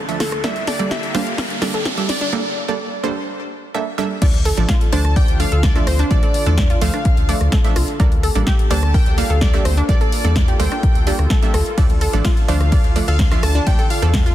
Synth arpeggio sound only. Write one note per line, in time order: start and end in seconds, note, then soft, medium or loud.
0.20 0.27 F4 medium
0.44 0.48 A#4 medium
0.67 0.74 A4 medium
0.91 0.98 G4 loud
1.15 1.21 D4 loud
1.38 1.42 A#4 medium
1.74 1.80 A4 medium
1.98 2.04 G4 medium
2.21 2.27 D4 loud
4.22 4.26 D5 medium
4.45 4.52 A4 medium
4.69 4.76 F4 loud
4.93 4.99 D4 loud
5.16 5.20 D5 medium
5.52 5.58 A4 medium
5.76 5.82 F4 medium
5.99 6.05 D4 loud
6.23 6.27 A4 medium
6.46 6.53 A4 medium
6.70 6.76 F4 medium
6.94 6.97 D4 medium
7.29 7.35 D5 medium
7.52 7.56 A4 medium
7.76 7.83 F4 medium
8.00 8.04 A#4 medium
8.23 8.30 A4 medium
8.47 8.54 G4 loud
8.71 8.77 D4 loud
8.94 8.98 A#4 medium
9.30 9.36 A4 medium
9.54 9.60 G4 medium
9.77 9.83 D4 loud
10.01 10.05 A4 medium
10.24 10.31 A4 medium
10.48 10.54 G4 medium
10.72 10.75 D4 medium
11.07 11.13 G4 medium
11.30 11.37 A4 medium
11.54 11.58 A4 medium
11.78 11.82 D5 medium
12.01 12.08 A4 medium
12.25 12.31 F4 loud
12.48 12.55 D4 loud
12.72 12.76 D5 medium
13.08 13.14 A4 medium
13.31 13.38 F4 medium
13.55 13.61 D4 loud
13.79 13.82 A4 medium
14.02 14.09 A4 medium
14.26 14.32 F4 medium